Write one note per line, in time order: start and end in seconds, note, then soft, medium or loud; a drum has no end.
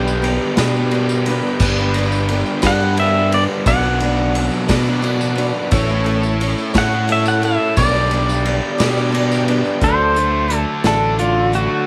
0.00 0.37 B1 loud
0.00 0.21 B3 medium
0.00 0.61 B3 medium
0.00 0.23 D4 medium
0.00 0.59 D4 medium
0.00 1.59 D4 medium
0.00 0.23 G4 medium
0.00 0.59 G4 medium
0.00 1.59 G4 medium
0.00 0.24 B4 medium
0.00 0.57 B4 medium
0.00 1.59 B4 medium
0.00 0.29 G5 medium
0.08 tambourine medium
0.22 0.57 B3 medium
0.22 0.57 D4 medium
0.22 0.58 G4 medium
0.22 0.58 B4 medium
0.22 ride medium
0.22 tambourine soft
0.57 0.75 B2 medium
0.57 1.40 B2 loud
0.57 0.75 G3 medium
0.57 0.75 B3 medium
0.57 0.76 D4 medium
0.57 0.75 G4 medium
0.57 0.73 B4 medium
0.57 snare loud
0.57 ride medium
0.57 tambourine medium
0.74 0.90 B3 medium
0.74 0.91 D4 medium
0.74 0.92 G4 medium
0.74 0.92 B4 medium
0.91 1.25 B3 medium
0.91 1.26 D4 medium
0.91 1.27 G4 medium
0.91 1.28 B4 medium
0.91 ride medium
1.09 tambourine medium
1.25 1.60 B3 medium
1.25 1.60 D4 medium
1.25 1.61 G4 medium
1.25 ride medium
1.25 tambourine soft
1.30 1.61 B4 medium
1.60 2.42 G1 loud
1.60 1.78 G2 medium
1.60 1.78 G3 medium
1.60 1.78 B3 medium
1.60 1.78 D4 medium
1.60 3.65 D4 medium
1.60 3.64 G4 medium
1.60 1.78 G4 medium
1.60 3.65 B4 medium
1.60 1.77 B4 loud
1.60 kick loud
1.60 tambourine loud
1.60 crash medium
1.78 1.94 B3 medium
1.78 1.95 D4 soft
1.78 1.96 G4 medium
1.78 1.95 B4 medium
1.94 2.28 B3 medium
1.94 2.30 D4 medium
1.94 ride medium
1.98 2.31 G4 medium
1.98 2.31 B4 medium
2.12 tambourine medium
2.29 2.62 B3 medium
2.29 2.63 D4 medium
2.29 2.63 G4 medium
2.29 ride medium
2.33 2.64 B4 medium
2.46 tambourine soft
2.62 2.80 G2 medium
2.62 3.45 G2 loud
2.62 2.81 G3 medium
2.62 2.81 B3 medium
2.62 2.81 D4 medium
2.62 2.80 G4 medium
2.62 2.79 B4 medium
2.62 kick medium
2.62 snare loud
2.62 ride loud
2.62 tambourine loud
2.67 2.99 F#5 loud
2.80 2.96 B3 soft
2.80 2.97 D4 soft
2.80 2.98 G4 medium
2.80 2.98 B4 medium
2.97 3.31 B3 medium
2.97 3.32 D4 medium
2.97 3.33 G4 medium
2.97 3.33 B4 medium
2.97 3.34 E5 loud
2.97 ride medium
3.32 3.66 B3 medium
3.32 3.66 D4 medium
3.32 3.67 G4 medium
3.32 3.67 B4 medium
3.32 3.43 D5 medium
3.32 ride medium
3.66 4.48 B1 loud
3.66 3.83 B2 medium
3.66 3.83 F#3 medium
3.66 3.84 B3 medium
3.66 5.70 D4 medium
3.66 3.84 D4 medium
3.66 5.70 F#4 medium
3.66 3.83 F#4 medium
3.66 5.70 B4 medium
3.66 3.82 D5 medium
3.66 4.40 F#5 medium
3.66 kick loud
3.66 ride loud
3.66 tambourine medium
3.83 4.00 B3 soft
3.83 4.01 D4 soft
3.83 4.01 F#4 medium
3.83 4.00 D5 medium
4.00 4.33 B3 medium
4.00 4.35 D4 medium
4.00 4.35 F#4 medium
4.00 ride medium
4.05 4.37 D5 medium
4.34 4.67 B3 medium
4.34 4.68 D4 medium
4.34 4.69 F#4 medium
4.34 4.69 D5 medium
4.34 ride medium
4.52 tambourine soft
4.68 4.86 B2 loud
4.68 5.51 B2 loud
4.68 4.86 F#3 medium
4.68 4.86 B3 medium
4.68 4.86 D4 loud
4.68 4.86 F#4 medium
4.68 4.84 D5 loud
4.68 kick medium
4.68 snare loud
4.68 ride loud
4.68 tambourine medium
4.86 5.01 B3 medium
4.86 5.02 D4 medium
4.86 5.03 F#4 medium
4.86 5.03 D5 medium
5.02 5.34 B3 medium
5.02 5.36 D4 medium
5.02 5.37 F#4 medium
5.02 5.37 D5 medium
5.02 ride medium
5.21 tambourine medium
5.35 5.71 B3 medium
5.35 5.71 D4 medium
5.35 5.72 F#4 medium
5.35 5.72 D5 medium
5.35 ride medium
5.71 6.54 A1 loud
5.71 5.88 A3 medium
5.71 7.75 C#4 medium
5.71 5.89 E4 medium
5.71 7.75 E4 medium
5.71 5.89 A4 medium
5.71 7.75 A4 medium
5.71 5.88 C#5 loud
5.71 kick loud
5.71 ride medium
5.71 tambourine medium
5.89 6.05 E4 medium
5.89 6.06 A4 medium
5.89 6.06 C#5 medium
6.04 6.39 A3 medium
6.04 6.40 E4 medium
6.04 6.41 A4 medium
6.04 6.41 C#5 medium
6.04 ride medium
6.23 tambourine medium
6.40 6.74 A3 medium
6.40 6.74 E4 medium
6.40 6.74 A4 medium
6.40 6.75 C#5 medium
6.40 ride medium
6.58 tambourine soft
6.74 7.57 A2 loud
6.74 6.92 A3 medium
6.74 6.92 E4 medium
6.74 6.92 A4 medium
6.74 6.91 C#5 medium
6.74 kick medium
6.74 snare loud
6.74 ride medium
6.74 tambourine medium
6.78 7.11 F#5 loud
6.92 7.08 E4 soft
6.92 7.08 A4 medium
6.92 7.09 C#5 medium
7.08 7.41 A3 medium
7.08 7.42 E4 medium
7.08 7.43 A4 medium
7.08 7.44 C#5 medium
7.08 ride medium
7.12 7.28 E5 loud
7.26 7.44 F#5 loud
7.26 tambourine medium
7.42 7.76 A3 medium
7.42 7.77 E4 medium
7.42 7.78 A4 medium
7.42 7.78 C#5 medium
7.42 7.76 E5 medium
7.42 ride medium
7.76 8.59 B1 medium
7.76 7.94 B3 medium
7.76 9.80 D4 medium
7.76 7.94 D4 medium
7.76 9.80 G4 medium
7.76 7.95 G4 medium
7.76 9.80 B4 medium
7.76 8.84 D5 medium
7.76 7.93 D5 medium
7.76 kick loud
7.76 ride loud
7.76 tambourine medium
7.94 8.10 D4 soft
7.94 8.12 G4 medium
7.94 8.11 D5 medium
8.11 8.44 B3 medium
8.11 8.45 D4 medium
8.11 8.46 G4 medium
8.11 8.47 D5 medium
8.11 ride medium
8.29 tambourine medium
8.45 8.77 B3 medium
8.45 8.79 D4 medium
8.45 8.78 G4 medium
8.45 8.79 D5 medium
8.45 ride medium
8.45 tambourine soft
8.78 9.62 B2 loud
8.78 8.96 B3 medium
8.78 8.97 D4 medium
8.78 8.97 G4 loud
8.78 8.96 D5 loud
8.78 snare loud
8.78 ride loud
8.78 tambourine loud
8.82 9.82 B3 medium
8.82 9.44 C#5 medium
8.97 9.13 D4 medium
8.97 9.13 G4 medium
8.97 9.13 D5 medium
9.12 9.47 B3 medium
9.12 9.47 D4 medium
9.12 9.48 G4 medium
9.12 9.48 D5 medium
9.12 ride medium
9.32 tambourine medium
9.48 9.81 B3 medium
9.48 9.81 D4 medium
9.48 9.82 G4 medium
9.48 9.83 D5 medium
9.48 ride medium
9.65 tambourine soft
9.81 10.64 D2 medium
9.81 10.16 D3 medium
9.81 11.87 F#3 medium
9.81 10.16 A3 medium
9.81 11.87 D4 medium
9.81 10.16 D4 medium
9.81 10.15 F#4 medium
9.81 11.87 A4 medium
9.81 10.13 A4 medium
9.81 10.57 C5 medium
9.81 kick loud
9.81 closed hi-hat medium
10.14 11.53 A3 medium
10.14 10.49 D4 soft
10.14 10.49 F#4 soft
10.14 10.50 A4 medium
10.14 closed hi-hat medium
10.48 11.18 D3 medium
10.48 10.84 A3 medium
10.48 10.84 D4 medium
10.48 10.83 F#4 medium
10.48 10.83 A4 medium
10.48 closed hi-hat medium
10.57 10.83 A4 medium
10.84 11.66 A1 medium
10.84 11.19 D3 medium
10.84 11.18 A3 medium
10.84 11.19 D4 medium
10.84 11.19 F#4 medium
10.84 11.19 A4 medium
10.84 snare loud
10.84 closed hi-hat medium
11.19 11.87 D3 medium
11.19 11.54 A3 medium
11.19 11.54 D4 medium
11.19 11.53 F4 medium
11.19 closed hi-hat medium
11.23 11.51 A4 medium
11.52 11.87 A3 medium
11.52 11.87 D4 soft
11.52 11.87 F#4 soft
11.52 11.87 F#4 loud
11.52 11.87 A4 medium
11.52 closed hi-hat medium